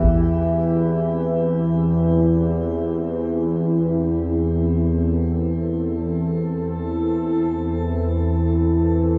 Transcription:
Already playing: E2 E3 E4 G4
0.03 E2, taiko
0.78 C4
4.66 A4

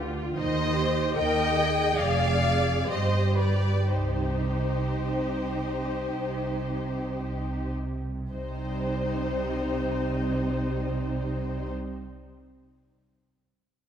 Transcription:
Already playing: D2 D3
0.00 F4
0.36 D#2 D#3 D#4 C5 D#5
0.78 G4
1.16 D#2 D#3 A#4 D#5 G5
1.57 G#4
1.98 F1 F2 D5 F5
2.89 G1 G2 G4 C5 D#5
3.38 B4 D5
3.89 C2 C3 D#4 G4 C5
4.96 C2 C3
6.07 C2 C3
7.18 C2 C3
8.31 C2 C3 G3 C4 D#4 C5

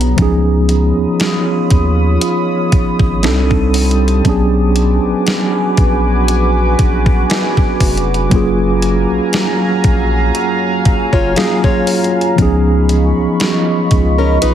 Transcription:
Already playing: B1 F#3 B3 D4 G#4 C#5 A#5
0.01 closed hi-hat
0.16 C#2 F3 B3 C#4 F4 C#5 B5 D#6, kick, closed hi-hat
0.21 D#4 G#4
0.69 closed hi-hat
0.97 D#2
1.20 snare, closed hi-hat
1.70 D#2, kick, closed hi-hat
2.21 closed hi-hat
2.72 G#1, kick, closed hi-hat
2.99 G#1, kick
3.23 C2 G3 C4 D4 D#4 A4, snare, closed hi-hat
3.51 kick
3.74 closed hi-hat, open hi-hat
3.91 closed hi-hat
4.08 closed hi-hat
4.23 B1 F#3 B3 C#4 F#4 B4 G#5 D6, kick, closed hi-hat
4.28 D4 G#4
4.76 closed hi-hat
5.04 A#1
5.27 snare, closed hi-hat
5.77 A#1, kick, closed hi-hat
6.28 closed hi-hat
6.79 A#1, kick, closed hi-hat
7.06 kick
7.30 snare, closed hi-hat
7.57 kick
7.80 F1, kick, closed hi-hat, open hi-hat
7.97 closed hi-hat
8.14 closed hi-hat
8.29 F#1 F#3 A#3 C#4 F5 G#5 A#5, kick, closed hi-hat
8.34 F4 G#4
8.82 closed hi-hat
9.10 A#1
9.33 snare, closed hi-hat
9.84 A#1, kick, closed hi-hat
10.35 closed hi-hat
10.85 F#1, kick, closed hi-hat
11.13 F#1 F4 C#5, kick
11.36 F#3 A#3 C#4 F4 G#4 F5, snare, closed hi-hat
11.64 F4 C#5, kick
11.87 closed hi-hat, open hi-hat
12.04 closed hi-hat
12.21 closed hi-hat
12.36 C#2 F3 B3 C#4 F4 D#5 B5 C#6, kick, closed hi-hat
12.41 D#4 G#4
12.89 closed hi-hat
13.17 C#2
13.40 snare, closed hi-hat
13.91 C#2, kick, closed hi-hat
14.18 C#4 A#4
14.42 B1 D#4 B4 D#6, closed hi-hat

